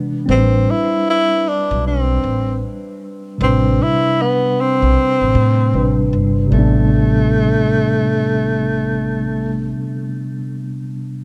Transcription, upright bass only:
0.29 A1
1.71 B1
2.24 A1
3.41 A1
4.82 B1
5.21 A1
5.35 A2
5.74 A1
6.13 G1
6.52 A1

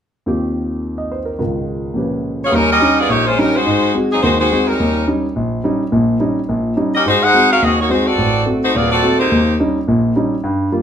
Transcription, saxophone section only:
2.45 B3 F4 G#4 C#5
2.55 G3 C#4 D#4 A#4
2.72 C#4 G4 A#4 D#5
3.00 B3 F4 G#4 D5
3.10 A#3 D#4 G4 C#5
3.27 G#3 C#4 F4 C5
3.40 G3 C#4 D#4 A#4
3.56 G#3 D#4 F#4 C5
4.12 F#3 C4 D#4 G#4
4.23 G#3 D#4 F#4 C5
4.39 G#3 D#4 F#4 C5
4.68 G3 C#4 D#4 A#4
6.95 C#4 G4 A#4 D#5
7.07 G#3 D#4 F#4 C5
7.24 D#4 G#4 C5 F#5
7.52 C#4 F#4 A#4 F5
7.63 C4 F#4 G#4 D#5
7.81 A#3 D#4 F#4 C#5
7.91 G#3 D#4 F#4 C5
8.06 C4 F#4 A4 D5
8.64 A3 D#4 F#4 C5
8.75 B3 F4 G#4 D5
8.91 C4 F#4 A4 D5
9.19 A#3 D#4 G4 C5

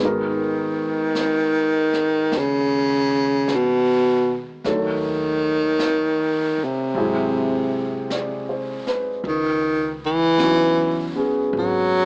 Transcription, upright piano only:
Already playing: G#3 B3 D#5
0.00 D#4 F#4
0.05 A#4
4.64 F#3 A3 D#4 A4 C#5
6.96 F#3 G#3 C4 E4 G#4
8.12 D5
8.49 C5
8.87 B4
10.37 F#3 B3 C#4 D#4
10.41 F#4
11.15 B3 C#4 G#4

